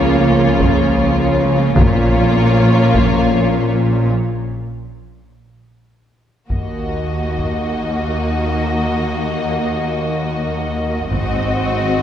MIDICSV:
0, 0, Header, 1, 8, 480
1, 0, Start_track
1, 0, Key_signature, -6, "minor"
1, 0, Tempo, 500000
1, 11542, End_track
2, 0, Start_track
2, 0, Title_t, "Violin section"
2, 0, Program_c, 0, 48
2, 0, Note_on_c, 0, 73, 54
2, 1659, Note_off_c, 0, 73, 0
2, 1697, Note_on_c, 0, 73, 67
2, 3922, Note_off_c, 0, 73, 0
2, 6257, Note_on_c, 0, 75, 36
2, 10651, Note_off_c, 0, 75, 0
2, 10668, Note_on_c, 0, 75, 58
2, 11542, Note_off_c, 0, 75, 0
2, 11542, End_track
3, 0, Start_track
3, 0, Title_t, "Violin section"
3, 0, Program_c, 1, 48
3, 0, Note_on_c, 1, 65, 64
3, 1663, Note_off_c, 1, 65, 0
3, 1695, Note_on_c, 1, 65, 68
3, 3921, Note_off_c, 1, 65, 0
3, 6236, Note_on_c, 1, 66, 35
3, 10641, Note_off_c, 1, 66, 0
3, 10692, Note_on_c, 1, 66, 59
3, 11542, Note_off_c, 1, 66, 0
3, 11542, End_track
4, 0, Start_track
4, 0, Title_t, "Viola section"
4, 0, Program_c, 2, 48
4, 0, Note_on_c, 2, 58, 67
4, 1663, Note_off_c, 2, 58, 0
4, 1697, Note_on_c, 2, 58, 70
4, 3922, Note_off_c, 2, 58, 0
4, 6232, Note_on_c, 2, 58, 37
4, 10639, Note_off_c, 2, 58, 0
4, 10664, Note_on_c, 2, 60, 59
4, 11542, Note_off_c, 2, 60, 0
4, 11542, End_track
5, 0, Start_track
5, 0, Title_t, "French horn section"
5, 0, Program_c, 3, 60
5, 0, Note_on_c, 3, 53, 64
5, 0, Note_on_c, 3, 61, 66
5, 1519, Note_off_c, 3, 53, 0
5, 1519, Note_off_c, 3, 61, 0
5, 1682, Note_on_c, 3, 61, 73
5, 1693, Note_on_c, 3, 53, 77
5, 3915, Note_off_c, 3, 61, 0
5, 3920, Note_off_c, 3, 53, 0
5, 6238, Note_on_c, 3, 58, 38
5, 6242, Note_on_c, 3, 54, 39
5, 10642, Note_off_c, 3, 58, 0
5, 10644, Note_off_c, 3, 54, 0
5, 10672, Note_on_c, 3, 60, 59
5, 10680, Note_on_c, 3, 54, 60
5, 11542, Note_off_c, 3, 54, 0
5, 11542, Note_off_c, 3, 60, 0
5, 11542, End_track
6, 0, Start_track
6, 0, Title_t, "Cello section"
6, 0, Program_c, 4, 48
6, 0, Note_on_c, 4, 49, 70
6, 1664, Note_off_c, 4, 49, 0
6, 1696, Note_on_c, 4, 46, 79
6, 3922, Note_off_c, 4, 46, 0
6, 6239, Note_on_c, 4, 39, 41
6, 10642, Note_off_c, 4, 39, 0
6, 10675, Note_on_c, 4, 44, 64
6, 11542, Note_off_c, 4, 44, 0
6, 11542, End_track
7, 0, Start_track
7, 0, Title_t, "Double bass section"
7, 0, Program_c, 5, 48
7, 0, Note_on_c, 5, 37, 64
7, 1661, Note_off_c, 5, 37, 0
7, 1696, Note_on_c, 5, 34, 68
7, 3922, Note_off_c, 5, 34, 0
7, 6243, Note_on_c, 5, 39, 37
7, 10644, Note_off_c, 5, 39, 0
7, 10678, Note_on_c, 5, 32, 52
7, 11542, Note_off_c, 5, 32, 0
7, 11542, End_track
8, 0, Start_track
8, 0, Title_t, "Taiko and cinematic ensemble drums"
8, 579, Note_on_c, 9, 41, 73
8, 675, Note_off_c, 9, 41, 0
8, 1689, Note_on_c, 9, 41, 97
8, 1785, Note_off_c, 9, 41, 0
8, 2826, Note_on_c, 9, 41, 73
8, 2922, Note_off_c, 9, 41, 0
8, 6240, Note_on_c, 9, 41, 40
8, 6336, Note_off_c, 9, 41, 0
8, 7081, Note_on_c, 9, 41, 27
8, 7177, Note_off_c, 9, 41, 0
8, 10681, Note_on_c, 9, 41, 54
8, 10777, Note_off_c, 9, 41, 0
8, 11542, End_track
0, 0, End_of_file